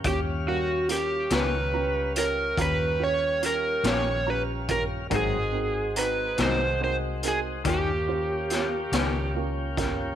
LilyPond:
<<
  \new Staff \with { instrumentName = "Electric slide guitar" } { \time 12/8 \key ees \mixolydian \tempo 4. = 47 g'8 ges'8 g'8 ces''4 bes'8 ces''8 des''8 bes'8 des''8 ces''8 bes'8 | aes'4 ces''8 c''8 c''8 aes'8 g'2 r4 | }
  \new Staff \with { instrumentName = "Upright piano" } { \time 12/8 \key ees \mixolydian <des' f' g' des''>8 <g des' bes' f''>8 <des' f' g' bes'>8 <des' f' g' bes''>8 <des' f' g' bes''>8 <des' f' g' des''>8 <des' f' g' bes''>8 <des' f' g' des''>8 <des' f' g' bes'>8 <des' f' g' bes'>8 <des' f' g' bes''>8 <des' f' g' bes'>8 | <c' ees' ges' bes'>8 <c' ees' ges' bes'>8 <c' ees' ges' bes''>8 <c' ees' ges' bes'>8 <c' ees' ges' bes'>8 <c' ees' ges' bes'>8 <des' f' g' bes'>8 <des' f' g' c''>8 <des' f' g' des''>8 <des' f' g' des''>8 <des' f' g' bes'>8 <des' f' g' bes'>8 | }
  \new Staff \with { instrumentName = "Tonewheel organ" } { \time 12/8 \key ees \mixolydian <g des' f''>1. | <aes c' ees' ges'>2. <bes des' f' g'>2. | }
  \new Staff \with { instrumentName = "Clean electric guitar" } { \time 12/8 \key ees \mixolydian r4. <ees bes des' g'>8 r2 r8 <ees bes des' g'>8 r4 | <aes, ges c' ees'>8 r4 <aes, ges c' ees'>8 r4 <ees bes des' g'>8 r4 <ees bes des' g'>8 r4 | }
  \new Staff \with { instrumentName = "Fingered electric bass" } { \clef bass \time 12/8 \key ees \mixolydian ees,4. des,4. ees,4. bes,,4. | aes,,4. c,4. ees,4. des,4. | }
  \new DrumStaff \with { instrumentName = "Drums" } \drummode { \time 12/8 <hh bd>4 hh8 <hh sn>4 hh8 <hh bd>4 hh8 <hh sn>4 <hh bd>8 | <hh bd>4 hh8 <hh sn>4 hh8 <hh bd>4 <hh sn>8 <hh sn>4 <hh bd sn>8 | }
>>